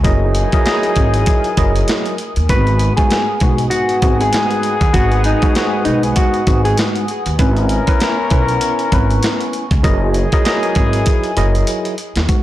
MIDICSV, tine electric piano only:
0, 0, Header, 1, 2, 480
1, 0, Start_track
1, 0, Tempo, 612245
1, 35, Time_signature, 4, 2, 24, 8
1, 9744, End_track
2, 0, Start_track
2, 0, Title_t, "Tine electric piano"
2, 0, Program_c, 0, 4
2, 26, Note_on_c, 0, 54, 99
2, 28, Note_on_c, 0, 64, 87
2, 30, Note_on_c, 0, 68, 82
2, 32, Note_on_c, 0, 70, 92
2, 34, Note_on_c, 0, 75, 108
2, 376, Note_off_c, 0, 54, 0
2, 377, Note_off_c, 0, 64, 0
2, 378, Note_off_c, 0, 68, 0
2, 379, Note_off_c, 0, 70, 0
2, 380, Note_off_c, 0, 75, 0
2, 417, Note_on_c, 0, 54, 96
2, 419, Note_on_c, 0, 64, 88
2, 420, Note_on_c, 0, 68, 88
2, 423, Note_on_c, 0, 70, 94
2, 424, Note_on_c, 0, 75, 106
2, 502, Note_off_c, 0, 54, 0
2, 505, Note_off_c, 0, 64, 0
2, 507, Note_off_c, 0, 68, 0
2, 508, Note_off_c, 0, 70, 0
2, 511, Note_off_c, 0, 75, 0
2, 512, Note_on_c, 0, 54, 95
2, 514, Note_on_c, 0, 64, 89
2, 516, Note_on_c, 0, 68, 90
2, 517, Note_on_c, 0, 70, 88
2, 520, Note_on_c, 0, 75, 106
2, 1185, Note_off_c, 0, 54, 0
2, 1186, Note_off_c, 0, 64, 0
2, 1187, Note_off_c, 0, 68, 0
2, 1188, Note_off_c, 0, 70, 0
2, 1189, Note_off_c, 0, 75, 0
2, 1232, Note_on_c, 0, 54, 100
2, 1234, Note_on_c, 0, 64, 100
2, 1236, Note_on_c, 0, 68, 93
2, 1238, Note_on_c, 0, 70, 92
2, 1240, Note_on_c, 0, 75, 110
2, 1681, Note_off_c, 0, 54, 0
2, 1682, Note_off_c, 0, 64, 0
2, 1684, Note_off_c, 0, 68, 0
2, 1684, Note_off_c, 0, 70, 0
2, 1685, Note_off_c, 0, 75, 0
2, 1951, Note_on_c, 0, 44, 93
2, 1953, Note_on_c, 0, 56, 78
2, 1956, Note_on_c, 0, 59, 89
2, 1959, Note_on_c, 0, 66, 109
2, 2299, Note_off_c, 0, 44, 0
2, 2300, Note_off_c, 0, 56, 0
2, 2301, Note_off_c, 0, 59, 0
2, 2303, Note_off_c, 0, 66, 0
2, 2334, Note_on_c, 0, 44, 83
2, 2338, Note_on_c, 0, 56, 78
2, 2339, Note_on_c, 0, 59, 89
2, 2342, Note_on_c, 0, 66, 103
2, 2552, Note_off_c, 0, 44, 0
2, 2554, Note_off_c, 0, 56, 0
2, 2555, Note_off_c, 0, 59, 0
2, 2556, Note_off_c, 0, 66, 0
2, 2677, Note_on_c, 0, 44, 97
2, 2680, Note_on_c, 0, 56, 86
2, 2682, Note_on_c, 0, 59, 90
2, 2685, Note_on_c, 0, 66, 104
2, 3124, Note_off_c, 0, 44, 0
2, 3125, Note_off_c, 0, 56, 0
2, 3127, Note_off_c, 0, 59, 0
2, 3128, Note_off_c, 0, 66, 0
2, 3146, Note_on_c, 0, 44, 96
2, 3149, Note_on_c, 0, 56, 83
2, 3152, Note_on_c, 0, 59, 88
2, 3155, Note_on_c, 0, 66, 109
2, 3714, Note_off_c, 0, 44, 0
2, 3716, Note_off_c, 0, 56, 0
2, 3717, Note_off_c, 0, 59, 0
2, 3719, Note_off_c, 0, 66, 0
2, 3867, Note_on_c, 0, 44, 95
2, 3869, Note_on_c, 0, 56, 85
2, 3872, Note_on_c, 0, 59, 86
2, 3875, Note_on_c, 0, 66, 107
2, 4217, Note_off_c, 0, 44, 0
2, 4218, Note_off_c, 0, 56, 0
2, 4219, Note_off_c, 0, 59, 0
2, 4221, Note_off_c, 0, 66, 0
2, 4249, Note_on_c, 0, 44, 102
2, 4251, Note_on_c, 0, 56, 88
2, 4253, Note_on_c, 0, 59, 85
2, 4256, Note_on_c, 0, 66, 110
2, 4347, Note_off_c, 0, 44, 0
2, 4350, Note_off_c, 0, 56, 0
2, 4352, Note_off_c, 0, 59, 0
2, 4355, Note_off_c, 0, 66, 0
2, 4356, Note_on_c, 0, 44, 103
2, 4359, Note_on_c, 0, 56, 87
2, 4361, Note_on_c, 0, 59, 87
2, 4365, Note_on_c, 0, 66, 106
2, 5027, Note_off_c, 0, 44, 0
2, 5029, Note_off_c, 0, 56, 0
2, 5030, Note_off_c, 0, 59, 0
2, 5031, Note_off_c, 0, 66, 0
2, 5072, Note_on_c, 0, 44, 99
2, 5074, Note_on_c, 0, 56, 93
2, 5076, Note_on_c, 0, 59, 93
2, 5079, Note_on_c, 0, 66, 110
2, 5521, Note_off_c, 0, 44, 0
2, 5523, Note_off_c, 0, 56, 0
2, 5524, Note_off_c, 0, 59, 0
2, 5525, Note_off_c, 0, 66, 0
2, 5791, Note_on_c, 0, 61, 94
2, 5795, Note_on_c, 0, 64, 90
2, 5798, Note_on_c, 0, 71, 108
2, 6139, Note_off_c, 0, 61, 0
2, 6141, Note_off_c, 0, 64, 0
2, 6142, Note_off_c, 0, 71, 0
2, 6171, Note_on_c, 0, 61, 99
2, 6175, Note_on_c, 0, 64, 96
2, 6179, Note_on_c, 0, 71, 112
2, 6390, Note_off_c, 0, 61, 0
2, 6392, Note_off_c, 0, 64, 0
2, 6394, Note_off_c, 0, 71, 0
2, 6511, Note_on_c, 0, 61, 93
2, 6515, Note_on_c, 0, 64, 92
2, 6519, Note_on_c, 0, 71, 99
2, 6961, Note_off_c, 0, 61, 0
2, 6963, Note_off_c, 0, 64, 0
2, 6965, Note_off_c, 0, 71, 0
2, 6995, Note_on_c, 0, 61, 101
2, 6998, Note_on_c, 0, 64, 85
2, 7002, Note_on_c, 0, 71, 112
2, 7558, Note_off_c, 0, 61, 0
2, 7560, Note_off_c, 0, 64, 0
2, 7562, Note_off_c, 0, 71, 0
2, 7706, Note_on_c, 0, 54, 97
2, 7709, Note_on_c, 0, 64, 84
2, 7710, Note_on_c, 0, 68, 85
2, 7712, Note_on_c, 0, 70, 94
2, 7714, Note_on_c, 0, 75, 113
2, 8057, Note_off_c, 0, 54, 0
2, 8058, Note_off_c, 0, 64, 0
2, 8058, Note_off_c, 0, 68, 0
2, 8059, Note_off_c, 0, 70, 0
2, 8061, Note_off_c, 0, 75, 0
2, 8095, Note_on_c, 0, 54, 94
2, 8097, Note_on_c, 0, 64, 90
2, 8099, Note_on_c, 0, 68, 88
2, 8102, Note_on_c, 0, 70, 95
2, 8103, Note_on_c, 0, 75, 107
2, 8181, Note_off_c, 0, 54, 0
2, 8183, Note_off_c, 0, 64, 0
2, 8185, Note_off_c, 0, 68, 0
2, 8187, Note_off_c, 0, 70, 0
2, 8189, Note_off_c, 0, 75, 0
2, 8191, Note_on_c, 0, 54, 93
2, 8192, Note_on_c, 0, 64, 94
2, 8195, Note_on_c, 0, 68, 87
2, 8196, Note_on_c, 0, 70, 87
2, 8199, Note_on_c, 0, 75, 104
2, 8865, Note_off_c, 0, 54, 0
2, 8865, Note_off_c, 0, 64, 0
2, 8867, Note_off_c, 0, 68, 0
2, 8868, Note_off_c, 0, 70, 0
2, 8869, Note_off_c, 0, 75, 0
2, 8912, Note_on_c, 0, 54, 97
2, 8913, Note_on_c, 0, 64, 100
2, 8915, Note_on_c, 0, 68, 90
2, 8917, Note_on_c, 0, 70, 96
2, 8919, Note_on_c, 0, 75, 112
2, 9361, Note_off_c, 0, 54, 0
2, 9362, Note_off_c, 0, 64, 0
2, 9363, Note_off_c, 0, 68, 0
2, 9364, Note_off_c, 0, 70, 0
2, 9365, Note_off_c, 0, 75, 0
2, 9631, Note_on_c, 0, 44, 91
2, 9633, Note_on_c, 0, 56, 78
2, 9636, Note_on_c, 0, 59, 81
2, 9638, Note_on_c, 0, 66, 98
2, 9744, Note_off_c, 0, 44, 0
2, 9744, Note_off_c, 0, 56, 0
2, 9744, Note_off_c, 0, 59, 0
2, 9744, Note_off_c, 0, 66, 0
2, 9744, End_track
0, 0, End_of_file